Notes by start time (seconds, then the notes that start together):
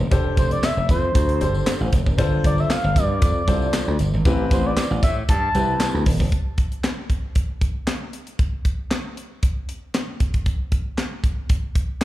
0.11 F1 D4 G4 A4 C5, kick, closed hi-hat, tambourine
0.37 F1 C5, kick, closed hi-hat, tambourine
0.51 D5, closed hi-hat, tambourine
0.63 E5, snare, clap, closed hi-hat, tambourine
0.77 F1
0.89 F2 C5, kick, closed hi-hat, tambourine
1.15 D2, kick, closed hi-hat, tambourine
1.29 closed hi-hat
1.41 G1 D4 G4 A4 C5, closed hi-hat, tambourine
1.54 tambourine
1.66 snare, clap, closed hi-hat, tambourine
1.81 A1
1.93 F1, kick, closed hi-hat, tambourine
2.06 F#1, kick, tambourine
2.18 G1 D4 F4 A4 C5, kick, closed hi-hat, tambourine
2.44 G1 D5, kick, closed hi-hat, tambourine
2.58 E5, tambourine
2.70 F5, snare, clap, closed hi-hat, tambourine
2.84 G1
2.96 G2 D5, kick, closed hi-hat, tambourine
3.22 F2, kick, closed hi-hat, tambourine
3.48 C2 D4 F4 A4 C5, kick, closed hi-hat, tambourine
3.62 tambourine
3.73 snare, clap, closed hi-hat, tambourine
3.88 D2
3.99 G1, closed hi-hat, tambourine
4.13 G#1, tambourine
4.25 A1 C4 E4 G4 B4, kick, closed hi-hat, tambourine
4.51 A1 C5, kick, closed hi-hat, tambourine
4.66 D5
4.77 snare, clap, closed hi-hat, tambourine
4.91 A1
5.03 A2 E5, kick, closed hi-hat, tambourine
5.29 G2 A5, kick, closed hi-hat, tambourine
5.55 C2 C4 E4 G4 B4, closed hi-hat, tambourine
5.80 snare, clap, closed hi-hat, tambourine
5.94 D2
6.06 D#1, kick, open hi-hat, tambourine
6.20 E1, kick, tambourine
6.32 kick, closed hi-hat
6.58 kick, closed hi-hat
6.72 closed hi-hat
6.84 snare, clap, closed hi-hat
7.10 kick, closed hi-hat
7.35 kick, closed hi-hat
7.61 kick, closed hi-hat
7.87 snare, clap, closed hi-hat
8.13 closed hi-hat
8.27 closed hi-hat
8.39 kick, closed hi-hat
8.65 kick, closed hi-hat
8.91 snare, clap, closed hi-hat
9.17 closed hi-hat
9.43 kick, closed hi-hat
9.69 closed hi-hat
9.94 snare, clap, closed hi-hat
10.20 kick, closed hi-hat
10.34 kick, closed hi-hat
10.46 kick, closed hi-hat
10.72 kick, closed hi-hat
10.98 snare, clap, closed hi-hat
11.24 kick, closed hi-hat
11.49 kick, closed hi-hat
11.75 kick, closed hi-hat
12.01 closed hi-hat